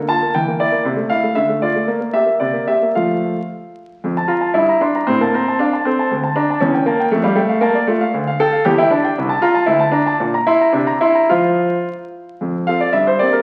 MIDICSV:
0, 0, Header, 1, 2, 480
1, 0, Start_track
1, 0, Key_signature, -1, "major"
1, 0, Tempo, 512821
1, 803, Time_signature, 2, 2, 24, 8
1, 2255, Tempo, 532387
1, 4655, Tempo, 511945
1, 9455, Tempo, 552486
1, 11375, Tempo, 520833
1, 12315, End_track
2, 0, Start_track
2, 0, Title_t, "Grand piano"
2, 0, Program_c, 0, 0
2, 0, Note_on_c, 0, 58, 40
2, 80, Note_on_c, 0, 81, 71
2, 88, Note_on_c, 0, 65, 41
2, 96, Note_off_c, 0, 58, 0
2, 211, Note_on_c, 0, 58, 36
2, 214, Note_off_c, 0, 65, 0
2, 322, Note_off_c, 0, 81, 0
2, 323, Note_on_c, 0, 79, 60
2, 329, Note_off_c, 0, 58, 0
2, 332, Note_on_c, 0, 52, 48
2, 445, Note_off_c, 0, 52, 0
2, 449, Note_on_c, 0, 58, 40
2, 467, Note_off_c, 0, 79, 0
2, 560, Note_on_c, 0, 74, 63
2, 562, Note_on_c, 0, 64, 42
2, 573, Note_off_c, 0, 58, 0
2, 674, Note_on_c, 0, 58, 37
2, 688, Note_off_c, 0, 64, 0
2, 795, Note_on_c, 0, 48, 52
2, 798, Note_off_c, 0, 58, 0
2, 800, Note_off_c, 0, 74, 0
2, 901, Note_on_c, 0, 57, 42
2, 914, Note_off_c, 0, 48, 0
2, 1025, Note_on_c, 0, 77, 68
2, 1035, Note_on_c, 0, 64, 41
2, 1036, Note_off_c, 0, 57, 0
2, 1151, Note_on_c, 0, 57, 35
2, 1163, Note_off_c, 0, 64, 0
2, 1267, Note_on_c, 0, 76, 58
2, 1272, Note_off_c, 0, 77, 0
2, 1272, Note_on_c, 0, 50, 49
2, 1276, Note_off_c, 0, 57, 0
2, 1393, Note_off_c, 0, 50, 0
2, 1395, Note_on_c, 0, 57, 38
2, 1515, Note_off_c, 0, 76, 0
2, 1516, Note_on_c, 0, 74, 56
2, 1521, Note_on_c, 0, 65, 37
2, 1525, Note_off_c, 0, 57, 0
2, 1640, Note_on_c, 0, 57, 36
2, 1650, Note_off_c, 0, 65, 0
2, 1757, Note_on_c, 0, 58, 46
2, 1763, Note_off_c, 0, 74, 0
2, 1764, Note_off_c, 0, 57, 0
2, 1865, Note_off_c, 0, 58, 0
2, 1879, Note_on_c, 0, 58, 37
2, 1998, Note_on_c, 0, 76, 65
2, 2006, Note_on_c, 0, 67, 35
2, 2011, Note_off_c, 0, 58, 0
2, 2115, Note_on_c, 0, 58, 32
2, 2136, Note_off_c, 0, 67, 0
2, 2244, Note_on_c, 0, 74, 47
2, 2247, Note_off_c, 0, 58, 0
2, 2249, Note_off_c, 0, 76, 0
2, 2249, Note_on_c, 0, 48, 40
2, 2366, Note_on_c, 0, 58, 34
2, 2369, Note_off_c, 0, 48, 0
2, 2493, Note_off_c, 0, 74, 0
2, 2495, Note_on_c, 0, 67, 32
2, 2495, Note_on_c, 0, 76, 57
2, 2500, Note_off_c, 0, 58, 0
2, 2627, Note_off_c, 0, 67, 0
2, 2627, Note_on_c, 0, 58, 32
2, 2720, Note_off_c, 0, 76, 0
2, 2744, Note_on_c, 0, 77, 54
2, 2745, Note_on_c, 0, 57, 29
2, 2748, Note_on_c, 0, 65, 29
2, 2749, Note_off_c, 0, 58, 0
2, 2751, Note_on_c, 0, 53, 35
2, 3091, Note_off_c, 0, 53, 0
2, 3136, Note_off_c, 0, 57, 0
2, 3138, Note_off_c, 0, 65, 0
2, 3197, Note_off_c, 0, 77, 0
2, 3724, Note_on_c, 0, 41, 44
2, 3834, Note_off_c, 0, 41, 0
2, 3844, Note_on_c, 0, 81, 41
2, 3939, Note_on_c, 0, 65, 65
2, 3944, Note_on_c, 0, 82, 30
2, 3962, Note_off_c, 0, 81, 0
2, 4058, Note_on_c, 0, 81, 35
2, 4066, Note_off_c, 0, 82, 0
2, 4175, Note_on_c, 0, 64, 66
2, 4180, Note_on_c, 0, 43, 45
2, 4182, Note_off_c, 0, 65, 0
2, 4182, Note_off_c, 0, 81, 0
2, 4298, Note_off_c, 0, 43, 0
2, 4311, Note_on_c, 0, 82, 37
2, 4417, Note_off_c, 0, 64, 0
2, 4420, Note_on_c, 0, 62, 65
2, 4425, Note_on_c, 0, 84, 33
2, 4431, Note_off_c, 0, 82, 0
2, 4540, Note_off_c, 0, 84, 0
2, 4549, Note_on_c, 0, 82, 39
2, 4631, Note_off_c, 0, 62, 0
2, 4652, Note_on_c, 0, 60, 71
2, 4661, Note_off_c, 0, 82, 0
2, 4664, Note_on_c, 0, 45, 48
2, 4775, Note_off_c, 0, 60, 0
2, 4777, Note_off_c, 0, 45, 0
2, 4782, Note_on_c, 0, 58, 63
2, 4788, Note_on_c, 0, 81, 41
2, 4900, Note_off_c, 0, 58, 0
2, 4909, Note_off_c, 0, 81, 0
2, 4909, Note_on_c, 0, 60, 64
2, 4918, Note_on_c, 0, 82, 34
2, 5028, Note_off_c, 0, 82, 0
2, 5040, Note_on_c, 0, 81, 38
2, 5121, Note_off_c, 0, 60, 0
2, 5144, Note_on_c, 0, 62, 65
2, 5154, Note_on_c, 0, 77, 42
2, 5156, Note_off_c, 0, 81, 0
2, 5273, Note_off_c, 0, 77, 0
2, 5275, Note_on_c, 0, 81, 39
2, 5287, Note_off_c, 0, 62, 0
2, 5388, Note_on_c, 0, 60, 60
2, 5393, Note_off_c, 0, 81, 0
2, 5397, Note_on_c, 0, 69, 37
2, 5514, Note_off_c, 0, 69, 0
2, 5519, Note_on_c, 0, 81, 40
2, 5624, Note_off_c, 0, 60, 0
2, 5629, Note_off_c, 0, 81, 0
2, 5629, Note_on_c, 0, 38, 48
2, 5740, Note_off_c, 0, 38, 0
2, 5746, Note_on_c, 0, 81, 39
2, 5860, Note_on_c, 0, 62, 72
2, 5864, Note_on_c, 0, 82, 35
2, 5867, Note_off_c, 0, 81, 0
2, 5979, Note_off_c, 0, 82, 0
2, 5999, Note_on_c, 0, 81, 40
2, 6071, Note_off_c, 0, 62, 0
2, 6093, Note_on_c, 0, 61, 73
2, 6102, Note_on_c, 0, 40, 51
2, 6105, Note_off_c, 0, 81, 0
2, 6211, Note_off_c, 0, 40, 0
2, 6225, Note_on_c, 0, 79, 42
2, 6305, Note_off_c, 0, 61, 0
2, 6332, Note_on_c, 0, 58, 71
2, 6337, Note_on_c, 0, 81, 36
2, 6342, Note_off_c, 0, 79, 0
2, 6451, Note_off_c, 0, 81, 0
2, 6465, Note_on_c, 0, 79, 43
2, 6544, Note_off_c, 0, 58, 0
2, 6569, Note_on_c, 0, 57, 72
2, 6575, Note_off_c, 0, 79, 0
2, 6575, Note_on_c, 0, 41, 53
2, 6685, Note_on_c, 0, 55, 67
2, 6685, Note_on_c, 0, 77, 46
2, 6687, Note_off_c, 0, 41, 0
2, 6687, Note_off_c, 0, 57, 0
2, 6797, Note_on_c, 0, 57, 73
2, 6803, Note_on_c, 0, 79, 39
2, 6805, Note_off_c, 0, 55, 0
2, 6811, Note_off_c, 0, 77, 0
2, 6921, Note_on_c, 0, 77, 45
2, 6925, Note_off_c, 0, 79, 0
2, 7018, Note_off_c, 0, 57, 0
2, 7035, Note_on_c, 0, 58, 79
2, 7044, Note_on_c, 0, 81, 47
2, 7050, Note_off_c, 0, 77, 0
2, 7166, Note_on_c, 0, 74, 49
2, 7172, Note_off_c, 0, 81, 0
2, 7183, Note_off_c, 0, 58, 0
2, 7281, Note_on_c, 0, 57, 68
2, 7292, Note_on_c, 0, 65, 46
2, 7293, Note_off_c, 0, 74, 0
2, 7411, Note_on_c, 0, 77, 48
2, 7416, Note_off_c, 0, 65, 0
2, 7427, Note_off_c, 0, 57, 0
2, 7529, Note_off_c, 0, 77, 0
2, 7531, Note_on_c, 0, 38, 57
2, 7646, Note_off_c, 0, 38, 0
2, 7658, Note_on_c, 0, 77, 51
2, 7775, Note_on_c, 0, 69, 89
2, 7779, Note_off_c, 0, 77, 0
2, 7781, Note_on_c, 0, 79, 41
2, 7888, Note_on_c, 0, 77, 46
2, 7894, Note_off_c, 0, 79, 0
2, 7988, Note_off_c, 0, 69, 0
2, 8008, Note_off_c, 0, 77, 0
2, 8009, Note_on_c, 0, 67, 81
2, 8017, Note_on_c, 0, 40, 59
2, 8129, Note_off_c, 0, 40, 0
2, 8129, Note_off_c, 0, 67, 0
2, 8135, Note_on_c, 0, 64, 85
2, 8137, Note_on_c, 0, 79, 53
2, 8250, Note_on_c, 0, 62, 70
2, 8252, Note_off_c, 0, 64, 0
2, 8256, Note_on_c, 0, 81, 43
2, 8259, Note_off_c, 0, 79, 0
2, 8373, Note_off_c, 0, 81, 0
2, 8383, Note_on_c, 0, 79, 53
2, 8490, Note_off_c, 0, 62, 0
2, 8496, Note_off_c, 0, 79, 0
2, 8510, Note_on_c, 0, 36, 61
2, 8612, Note_on_c, 0, 81, 54
2, 8615, Note_off_c, 0, 36, 0
2, 8730, Note_on_c, 0, 65, 86
2, 8735, Note_off_c, 0, 81, 0
2, 8740, Note_on_c, 0, 82, 44
2, 8849, Note_on_c, 0, 81, 51
2, 8853, Note_off_c, 0, 82, 0
2, 8944, Note_off_c, 0, 65, 0
2, 8961, Note_on_c, 0, 64, 73
2, 8968, Note_off_c, 0, 81, 0
2, 8969, Note_on_c, 0, 38, 59
2, 9083, Note_on_c, 0, 81, 52
2, 9086, Note_off_c, 0, 38, 0
2, 9109, Note_off_c, 0, 64, 0
2, 9197, Note_on_c, 0, 62, 74
2, 9209, Note_on_c, 0, 82, 45
2, 9214, Note_off_c, 0, 81, 0
2, 9333, Note_off_c, 0, 82, 0
2, 9337, Note_on_c, 0, 81, 52
2, 9425, Note_off_c, 0, 62, 0
2, 9458, Note_off_c, 0, 81, 0
2, 9463, Note_on_c, 0, 46, 64
2, 9572, Note_off_c, 0, 46, 0
2, 9587, Note_on_c, 0, 82, 52
2, 9695, Note_on_c, 0, 64, 83
2, 9701, Note_off_c, 0, 82, 0
2, 9701, Note_on_c, 0, 84, 43
2, 9811, Note_off_c, 0, 84, 0
2, 9823, Note_on_c, 0, 82, 48
2, 9902, Note_off_c, 0, 64, 0
2, 9920, Note_on_c, 0, 62, 65
2, 9926, Note_on_c, 0, 48, 61
2, 9931, Note_off_c, 0, 82, 0
2, 10040, Note_off_c, 0, 48, 0
2, 10044, Note_on_c, 0, 82, 50
2, 10137, Note_off_c, 0, 62, 0
2, 10166, Note_on_c, 0, 64, 78
2, 10169, Note_off_c, 0, 82, 0
2, 10173, Note_on_c, 0, 84, 40
2, 10289, Note_on_c, 0, 82, 46
2, 10290, Note_off_c, 0, 84, 0
2, 10410, Note_off_c, 0, 64, 0
2, 10411, Note_off_c, 0, 82, 0
2, 10414, Note_on_c, 0, 65, 74
2, 10420, Note_on_c, 0, 72, 39
2, 10425, Note_on_c, 0, 53, 52
2, 10427, Note_on_c, 0, 77, 40
2, 10765, Note_off_c, 0, 53, 0
2, 10811, Note_off_c, 0, 72, 0
2, 10814, Note_off_c, 0, 77, 0
2, 10905, Note_off_c, 0, 65, 0
2, 11383, Note_on_c, 0, 41, 40
2, 11615, Note_off_c, 0, 41, 0
2, 11623, Note_on_c, 0, 77, 64
2, 11633, Note_on_c, 0, 60, 31
2, 11640, Note_on_c, 0, 65, 33
2, 11640, Note_on_c, 0, 69, 35
2, 11741, Note_off_c, 0, 77, 0
2, 11749, Note_on_c, 0, 74, 56
2, 11801, Note_off_c, 0, 60, 0
2, 11805, Note_off_c, 0, 65, 0
2, 11806, Note_off_c, 0, 69, 0
2, 11859, Note_on_c, 0, 76, 62
2, 11864, Note_off_c, 0, 74, 0
2, 11865, Note_on_c, 0, 43, 42
2, 11979, Note_off_c, 0, 76, 0
2, 11993, Note_on_c, 0, 72, 58
2, 12094, Note_off_c, 0, 43, 0
2, 12104, Note_on_c, 0, 74, 63
2, 12105, Note_off_c, 0, 72, 0
2, 12113, Note_on_c, 0, 58, 34
2, 12116, Note_on_c, 0, 60, 33
2, 12122, Note_on_c, 0, 67, 35
2, 12220, Note_off_c, 0, 74, 0
2, 12229, Note_on_c, 0, 70, 58
2, 12280, Note_off_c, 0, 58, 0
2, 12282, Note_off_c, 0, 60, 0
2, 12285, Note_off_c, 0, 67, 0
2, 12315, Note_off_c, 0, 70, 0
2, 12315, End_track
0, 0, End_of_file